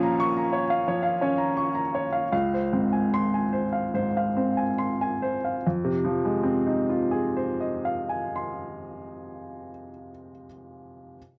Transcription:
0, 0, Header, 1, 2, 480
1, 0, Start_track
1, 0, Key_signature, -4, "minor"
1, 0, Tempo, 692042
1, 1085, Tempo, 776197
1, 1552, Time_signature, 4, 2, 24, 8
1, 2045, Tempo, 831025
1, 3005, Tempo, 848656
1, 4925, Tempo, 819672
1, 6803, End_track
2, 0, Start_track
2, 0, Title_t, "Grand piano"
2, 0, Program_c, 0, 0
2, 0, Control_c, 0, 64, 127
2, 0, Note_on_c, 0, 46, 73
2, 0, Note_on_c, 0, 53, 60
2, 0, Note_on_c, 0, 61, 48
2, 0, Note_on_c, 0, 73, 56
2, 0, Note_on_c, 0, 77, 65
2, 21, Note_on_c, 0, 82, 58
2, 78, Note_off_c, 0, 53, 0
2, 137, Note_on_c, 0, 85, 75
2, 199, Note_off_c, 0, 82, 0
2, 254, Note_on_c, 0, 82, 55
2, 265, Note_off_c, 0, 61, 0
2, 316, Note_off_c, 0, 85, 0
2, 365, Note_off_c, 0, 73, 0
2, 365, Note_on_c, 0, 73, 50
2, 434, Note_off_c, 0, 82, 0
2, 487, Note_off_c, 0, 77, 0
2, 487, Note_on_c, 0, 77, 52
2, 549, Note_off_c, 0, 73, 0
2, 569, Note_off_c, 0, 46, 0
2, 608, Note_on_c, 0, 53, 43
2, 610, Note_on_c, 0, 73, 52
2, 670, Note_off_c, 0, 77, 0
2, 712, Note_on_c, 0, 77, 48
2, 793, Note_off_c, 0, 73, 0
2, 842, Note_on_c, 0, 73, 54
2, 846, Note_on_c, 0, 61, 54
2, 908, Note_off_c, 0, 77, 0
2, 958, Note_on_c, 0, 82, 50
2, 992, Note_off_c, 0, 53, 0
2, 1038, Note_off_c, 0, 73, 0
2, 1088, Note_on_c, 0, 85, 50
2, 1154, Note_off_c, 0, 82, 0
2, 1199, Note_on_c, 0, 82, 51
2, 1229, Note_off_c, 0, 61, 0
2, 1270, Note_off_c, 0, 85, 0
2, 1321, Note_on_c, 0, 73, 48
2, 1385, Note_off_c, 0, 82, 0
2, 1432, Note_on_c, 0, 77, 43
2, 1507, Note_off_c, 0, 73, 0
2, 1546, Note_off_c, 0, 77, 0
2, 1554, Note_on_c, 0, 37, 58
2, 1556, Note_on_c, 0, 77, 49
2, 1563, Control_c, 0, 64, 0
2, 1680, Control_c, 0, 64, 127
2, 1687, Note_on_c, 0, 72, 40
2, 1748, Note_off_c, 0, 77, 0
2, 1805, Note_on_c, 0, 44, 38
2, 1806, Note_on_c, 0, 60, 39
2, 1878, Note_off_c, 0, 72, 0
2, 1927, Note_on_c, 0, 80, 41
2, 2000, Note_off_c, 0, 44, 0
2, 2057, Note_on_c, 0, 84, 62
2, 2118, Note_off_c, 0, 80, 0
2, 2174, Note_on_c, 0, 80, 39
2, 2190, Note_off_c, 0, 60, 0
2, 2238, Note_off_c, 0, 84, 0
2, 2282, Note_on_c, 0, 72, 38
2, 2357, Note_off_c, 0, 80, 0
2, 2397, Note_on_c, 0, 77, 40
2, 2471, Note_off_c, 0, 72, 0
2, 2496, Note_off_c, 0, 37, 0
2, 2521, Note_on_c, 0, 44, 33
2, 2524, Note_on_c, 0, 72, 41
2, 2590, Note_off_c, 0, 77, 0
2, 2653, Note_on_c, 0, 77, 39
2, 2715, Note_off_c, 0, 72, 0
2, 2766, Note_on_c, 0, 60, 37
2, 2768, Note_on_c, 0, 72, 34
2, 2840, Note_off_c, 0, 77, 0
2, 2885, Note_on_c, 0, 80, 40
2, 2908, Note_off_c, 0, 44, 0
2, 2959, Note_off_c, 0, 72, 0
2, 3008, Note_on_c, 0, 84, 43
2, 3078, Note_off_c, 0, 80, 0
2, 3138, Note_on_c, 0, 80, 44
2, 3153, Note_off_c, 0, 60, 0
2, 3201, Note_off_c, 0, 84, 0
2, 3257, Note_on_c, 0, 72, 43
2, 3329, Note_off_c, 0, 80, 0
2, 3382, Note_on_c, 0, 77, 35
2, 3449, Note_off_c, 0, 72, 0
2, 3497, Note_off_c, 0, 77, 0
2, 3504, Control_c, 0, 64, 0
2, 3507, Note_on_c, 0, 41, 46
2, 3608, Note_on_c, 0, 48, 53
2, 3631, Control_c, 0, 64, 127
2, 3721, Note_on_c, 0, 53, 49
2, 3837, Note_on_c, 0, 56, 44
2, 3941, Note_on_c, 0, 60, 47
2, 4072, Note_on_c, 0, 63, 44
2, 4202, Note_on_c, 0, 65, 37
2, 4324, Note_on_c, 0, 68, 43
2, 4468, Note_on_c, 0, 72, 40
2, 4603, Note_on_c, 0, 75, 34
2, 4742, Note_on_c, 0, 77, 35
2, 4880, Note_on_c, 0, 80, 33
2, 5032, Note_on_c, 0, 84, 38
2, 5823, Note_off_c, 0, 41, 0
2, 5928, Note_off_c, 0, 48, 0
2, 6045, Note_off_c, 0, 53, 0
2, 6165, Note_off_c, 0, 56, 0
2, 6263, Note_off_c, 0, 60, 0
2, 6263, Note_off_c, 0, 80, 0
2, 6264, Note_off_c, 0, 84, 0
2, 6265, Note_off_c, 0, 68, 0
2, 6266, Note_off_c, 0, 77, 0
2, 6268, Note_off_c, 0, 63, 0
2, 6268, Note_off_c, 0, 75, 0
2, 6270, Note_off_c, 0, 65, 0
2, 6270, Note_off_c, 0, 72, 0
2, 6687, Control_c, 0, 64, 0
2, 6803, End_track
0, 0, End_of_file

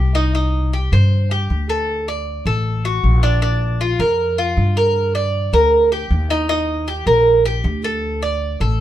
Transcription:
0, 0, Header, 1, 3, 480
1, 0, Start_track
1, 0, Key_signature, -2, "minor"
1, 0, Tempo, 384123
1, 436, Time_signature, 4, 2, 24, 8
1, 11001, End_track
2, 0, Start_track
2, 0, Title_t, "Cuban tres"
2, 0, Program_c, 0, 25
2, 0, Note_on_c, 0, 67, 67
2, 179, Note_off_c, 0, 67, 0
2, 186, Note_on_c, 0, 63, 78
2, 419, Note_off_c, 0, 63, 0
2, 434, Note_on_c, 0, 63, 76
2, 901, Note_off_c, 0, 63, 0
2, 916, Note_on_c, 0, 67, 66
2, 1149, Note_off_c, 0, 67, 0
2, 1158, Note_on_c, 0, 72, 67
2, 1623, Note_off_c, 0, 72, 0
2, 1640, Note_on_c, 0, 67, 69
2, 2104, Note_off_c, 0, 67, 0
2, 2118, Note_on_c, 0, 69, 74
2, 2583, Note_off_c, 0, 69, 0
2, 2602, Note_on_c, 0, 74, 70
2, 3065, Note_off_c, 0, 74, 0
2, 3081, Note_on_c, 0, 69, 66
2, 3544, Note_off_c, 0, 69, 0
2, 3561, Note_on_c, 0, 66, 75
2, 4024, Note_off_c, 0, 66, 0
2, 4036, Note_on_c, 0, 62, 84
2, 4260, Note_off_c, 0, 62, 0
2, 4275, Note_on_c, 0, 62, 82
2, 4741, Note_off_c, 0, 62, 0
2, 4758, Note_on_c, 0, 65, 75
2, 4990, Note_off_c, 0, 65, 0
2, 4994, Note_on_c, 0, 70, 73
2, 5460, Note_off_c, 0, 70, 0
2, 5477, Note_on_c, 0, 65, 74
2, 5942, Note_off_c, 0, 65, 0
2, 5958, Note_on_c, 0, 70, 78
2, 6422, Note_off_c, 0, 70, 0
2, 6434, Note_on_c, 0, 74, 75
2, 6900, Note_off_c, 0, 74, 0
2, 6917, Note_on_c, 0, 70, 75
2, 7381, Note_off_c, 0, 70, 0
2, 7397, Note_on_c, 0, 67, 68
2, 7861, Note_off_c, 0, 67, 0
2, 7877, Note_on_c, 0, 63, 89
2, 8097, Note_off_c, 0, 63, 0
2, 8112, Note_on_c, 0, 63, 90
2, 8579, Note_off_c, 0, 63, 0
2, 8594, Note_on_c, 0, 67, 68
2, 8827, Note_off_c, 0, 67, 0
2, 8832, Note_on_c, 0, 70, 72
2, 9298, Note_off_c, 0, 70, 0
2, 9316, Note_on_c, 0, 67, 79
2, 9781, Note_off_c, 0, 67, 0
2, 9802, Note_on_c, 0, 69, 78
2, 10264, Note_off_c, 0, 69, 0
2, 10278, Note_on_c, 0, 74, 73
2, 10742, Note_off_c, 0, 74, 0
2, 10759, Note_on_c, 0, 69, 71
2, 11001, Note_off_c, 0, 69, 0
2, 11001, End_track
3, 0, Start_track
3, 0, Title_t, "Upright bass"
3, 0, Program_c, 1, 32
3, 0, Note_on_c, 1, 36, 87
3, 1080, Note_off_c, 1, 36, 0
3, 1151, Note_on_c, 1, 43, 92
3, 1824, Note_off_c, 1, 43, 0
3, 1874, Note_on_c, 1, 38, 86
3, 3001, Note_off_c, 1, 38, 0
3, 3068, Note_on_c, 1, 33, 96
3, 3742, Note_off_c, 1, 33, 0
3, 3795, Note_on_c, 1, 34, 85
3, 4921, Note_off_c, 1, 34, 0
3, 4990, Note_on_c, 1, 41, 91
3, 5663, Note_off_c, 1, 41, 0
3, 5710, Note_on_c, 1, 43, 89
3, 6838, Note_off_c, 1, 43, 0
3, 6909, Note_on_c, 1, 38, 96
3, 7582, Note_off_c, 1, 38, 0
3, 7630, Note_on_c, 1, 39, 93
3, 8758, Note_off_c, 1, 39, 0
3, 8828, Note_on_c, 1, 34, 94
3, 9501, Note_off_c, 1, 34, 0
3, 9548, Note_on_c, 1, 38, 99
3, 10678, Note_off_c, 1, 38, 0
3, 10752, Note_on_c, 1, 33, 94
3, 11001, Note_off_c, 1, 33, 0
3, 11001, End_track
0, 0, End_of_file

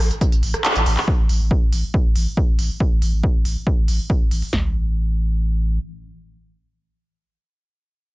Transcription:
0, 0, Header, 1, 3, 480
1, 0, Start_track
1, 0, Tempo, 431655
1, 1197, Time_signature, 4, 2, 24, 8
1, 9059, End_track
2, 0, Start_track
2, 0, Title_t, "Sub bass"
2, 0, Program_c, 0, 38
2, 0, Note_on_c, 0, 33, 102
2, 117, Note_off_c, 0, 33, 0
2, 360, Note_on_c, 0, 33, 77
2, 468, Note_off_c, 0, 33, 0
2, 475, Note_on_c, 0, 33, 98
2, 596, Note_off_c, 0, 33, 0
2, 841, Note_on_c, 0, 33, 82
2, 950, Note_off_c, 0, 33, 0
2, 957, Note_on_c, 0, 33, 103
2, 1077, Note_off_c, 0, 33, 0
2, 1320, Note_on_c, 0, 33, 78
2, 1432, Note_off_c, 0, 33, 0
2, 1438, Note_on_c, 0, 33, 105
2, 1554, Note_off_c, 0, 33, 0
2, 1561, Note_on_c, 0, 33, 83
2, 1674, Note_off_c, 0, 33, 0
2, 1801, Note_on_c, 0, 33, 73
2, 1912, Note_off_c, 0, 33, 0
2, 1918, Note_on_c, 0, 33, 99
2, 2038, Note_off_c, 0, 33, 0
2, 2280, Note_on_c, 0, 33, 75
2, 2391, Note_off_c, 0, 33, 0
2, 2398, Note_on_c, 0, 33, 98
2, 2518, Note_off_c, 0, 33, 0
2, 2761, Note_on_c, 0, 33, 80
2, 2872, Note_off_c, 0, 33, 0
2, 2879, Note_on_c, 0, 33, 95
2, 2998, Note_off_c, 0, 33, 0
2, 3241, Note_on_c, 0, 33, 74
2, 3351, Note_off_c, 0, 33, 0
2, 3358, Note_on_c, 0, 33, 100
2, 3474, Note_off_c, 0, 33, 0
2, 3480, Note_on_c, 0, 33, 79
2, 3594, Note_off_c, 0, 33, 0
2, 3720, Note_on_c, 0, 33, 75
2, 3831, Note_off_c, 0, 33, 0
2, 3837, Note_on_c, 0, 33, 100
2, 3957, Note_off_c, 0, 33, 0
2, 4201, Note_on_c, 0, 33, 75
2, 4312, Note_off_c, 0, 33, 0
2, 4318, Note_on_c, 0, 33, 96
2, 4438, Note_off_c, 0, 33, 0
2, 4681, Note_on_c, 0, 33, 77
2, 4791, Note_off_c, 0, 33, 0
2, 4798, Note_on_c, 0, 33, 98
2, 4918, Note_off_c, 0, 33, 0
2, 5036, Note_on_c, 0, 33, 94
2, 6432, Note_off_c, 0, 33, 0
2, 9059, End_track
3, 0, Start_track
3, 0, Title_t, "Drums"
3, 120, Note_on_c, 9, 42, 55
3, 231, Note_off_c, 9, 42, 0
3, 236, Note_on_c, 9, 36, 116
3, 236, Note_on_c, 9, 42, 83
3, 347, Note_off_c, 9, 36, 0
3, 347, Note_off_c, 9, 42, 0
3, 360, Note_on_c, 9, 42, 54
3, 471, Note_off_c, 9, 42, 0
3, 477, Note_on_c, 9, 46, 101
3, 589, Note_off_c, 9, 46, 0
3, 601, Note_on_c, 9, 37, 69
3, 601, Note_on_c, 9, 42, 54
3, 712, Note_off_c, 9, 37, 0
3, 712, Note_off_c, 9, 42, 0
3, 718, Note_on_c, 9, 39, 127
3, 718, Note_on_c, 9, 42, 86
3, 829, Note_off_c, 9, 39, 0
3, 829, Note_off_c, 9, 42, 0
3, 841, Note_on_c, 9, 42, 56
3, 952, Note_off_c, 9, 42, 0
3, 958, Note_on_c, 9, 46, 107
3, 1069, Note_off_c, 9, 46, 0
3, 1082, Note_on_c, 9, 39, 66
3, 1082, Note_on_c, 9, 46, 60
3, 1193, Note_off_c, 9, 39, 0
3, 1193, Note_off_c, 9, 46, 0
3, 1197, Note_on_c, 9, 36, 109
3, 1308, Note_off_c, 9, 36, 0
3, 1439, Note_on_c, 9, 46, 106
3, 1550, Note_off_c, 9, 46, 0
3, 1678, Note_on_c, 9, 36, 123
3, 1789, Note_off_c, 9, 36, 0
3, 1919, Note_on_c, 9, 46, 111
3, 2030, Note_off_c, 9, 46, 0
3, 2158, Note_on_c, 9, 36, 120
3, 2269, Note_off_c, 9, 36, 0
3, 2397, Note_on_c, 9, 46, 108
3, 2509, Note_off_c, 9, 46, 0
3, 2638, Note_on_c, 9, 36, 116
3, 2749, Note_off_c, 9, 36, 0
3, 2878, Note_on_c, 9, 46, 106
3, 2989, Note_off_c, 9, 46, 0
3, 3118, Note_on_c, 9, 36, 112
3, 3229, Note_off_c, 9, 36, 0
3, 3358, Note_on_c, 9, 46, 103
3, 3470, Note_off_c, 9, 46, 0
3, 3597, Note_on_c, 9, 36, 126
3, 3709, Note_off_c, 9, 36, 0
3, 3838, Note_on_c, 9, 46, 112
3, 3950, Note_off_c, 9, 46, 0
3, 4077, Note_on_c, 9, 36, 116
3, 4188, Note_off_c, 9, 36, 0
3, 4317, Note_on_c, 9, 46, 104
3, 4428, Note_off_c, 9, 46, 0
3, 4557, Note_on_c, 9, 36, 120
3, 4668, Note_off_c, 9, 36, 0
3, 4796, Note_on_c, 9, 46, 107
3, 4908, Note_off_c, 9, 46, 0
3, 4919, Note_on_c, 9, 46, 61
3, 5030, Note_off_c, 9, 46, 0
3, 5036, Note_on_c, 9, 38, 91
3, 5036, Note_on_c, 9, 43, 94
3, 5148, Note_off_c, 9, 38, 0
3, 5148, Note_off_c, 9, 43, 0
3, 9059, End_track
0, 0, End_of_file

